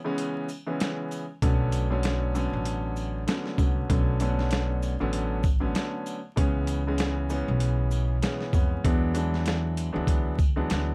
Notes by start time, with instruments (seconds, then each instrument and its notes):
0.04 grand piano C#3 E3 G#3 B3 C#4
0.18 closed hi-hat, sleigh bells
0.49 shaker, sleigh bells
0.67 grand piano C#3 E3 G#3 B3 C#4
0.80 snare, closed hi-hat, sleigh bells
1.11 shaker, sleigh bells
1.42 upright bass B1, grand piano D3 F#3 A3 B3 C#4, kick, closed hi-hat, sleigh bells
1.72 closed hi-hat, shaker, sleigh bells
1.90 grand piano D3 F#3 A3 B3 C#4
2.03 snare, closed hi-hat, sleigh bells
2.35 grand piano D3 F#3 A3 B3 C#4, shaker, sleigh bells
2.53 upright bass A1
2.65 closed hi-hat, sleigh bells
2.96 shaker, sleigh bells
3.27 grand piano D3 F#3 A3 B3 C#4, snare, closed hi-hat, sleigh bells
3.46 snare
3.58 upright bass C2, grand piano D3 F#3 A3 B3 C#4, kick, shaker, sleigh bells
3.89 upright bass B1, grand piano D3 F#3 A3 B3 C#4, kick, closed hi-hat, sleigh bells
4.20 grand piano D3 F#3 A3 B3 C#4, closed hi-hat, shaker, sleigh bells
4.39 snare
4.51 snare, closed hi-hat, sleigh bells
4.82 shaker, sleigh bells
5.00 upright bass A1, grand piano D3 F#3 A3 B3 C#4
5.13 closed hi-hat, sleigh bells
5.43 kick, shaker, sleigh bells
5.60 grand piano D3 F#3 A3 B3 C#4
5.75 snare, closed hi-hat, sleigh bells
6.06 shaker, sleigh bells
6.36 upright bass C#2, grand piano C#3 E3 G#3 B3 C#4, kick, closed hi-hat, sleigh bells
6.67 closed hi-hat, shaker, sleigh bells
6.87 grand piano C#3 E3 G#3 B3 C#4
6.98 snare, closed hi-hat, sleigh bells
7.30 grand piano C#3 E3 G#3 B3 C#4, shaker, sleigh bells
7.48 upright bass B1
7.60 closed hi-hat, sleigh bells
7.91 shaker, sleigh bells
8.22 grand piano C#3 E3 G#3 B3 C#4, snare, closed hi-hat, sleigh bells
8.40 snare
8.53 upright bass F2, grand piano C#3 E3 G#3 B3 C#4, kick, shaker, sleigh bells
8.84 upright bass E2, grand piano E3 F#3 G#3 B3 D4, kick, closed hi-hat, sleigh bells
9.14 grand piano E3 F#3 G#3 B3 D4, closed hi-hat, shaker, sleigh bells
9.34 snare
9.46 snare, closed hi-hat, sleigh bells
9.77 closed hi-hat, shaker, sleigh bells
9.93 upright bass D2, grand piano E3 F#3 G#3 B3 D4
10.07 kick, closed hi-hat, sleigh bells
10.38 kick, shaker, sleigh bells
10.56 grand piano E3 F#3 G#3 B3 D4
10.70 upright bass D2, snare, closed hi-hat, sleigh bells